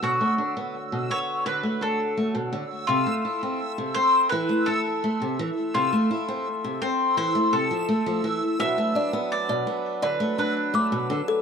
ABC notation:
X:1
M:4/4
L:1/16
Q:1/4=84
K:D
V:1 name="Synth texture"
e'16- | e'16- | e'16- | e'16 |]
V:2 name="Music box"
z16 | z16 | z16 | z2 d z2 d z2 d z3 d' z2 A |]
V:3 name="Mandolin"
F6 c2 B2 A4 z2 | =F6 =c2 B2 A4 z2 | =F6 =c2 c2 A4 z2 | e4 d4 B2 B4 z2 |]
V:4 name="Harmonium"
[D,Fc]16 | [Ae]16- | [Ae]16 | [F,DB]16 |]
V:5 name="Steel-string acoustic guitar"
B,, A, D B, z B,, B,2 D, A, D2 A, B,, D, z | =C, A, E =C z C, C2 E, A, E2 A, C, E, z | =C, A, E =C z C, C2 E, A, C, =F, A, F, E, z | B,, A, D B, z B,, B,2 D, A, D2 A, B,, D, z |]